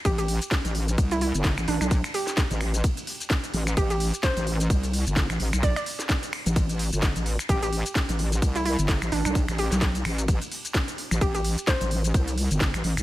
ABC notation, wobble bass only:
X:1
M:4/4
L:1/16
Q:"Swing 16ths" 1/4=129
K:Gmix
V:1 name="Wobble bass" clef=bass
A,,,3 z2 A,,,3 C,,3 G,,,2 A,,, A,,, B,,,- | B,,, z4 A,,,3 z6 A,,,2 | A,,,3 z2 A,,,3 z3 G,,,2 A,,, A,,, B,,,- | B,,, z6 A,,,4 G,,,2 A,,,2 z |
A,,,3 z2 A,,,3 C,,3 G,,,2 A,,, A,,, B,,,- | B,,, A,,,2 B,,,3 A,,,3 z6 A,,, | A,,,3 z2 A,,,3 C,,3 G,,,2 A,,, A,,, B,,, |]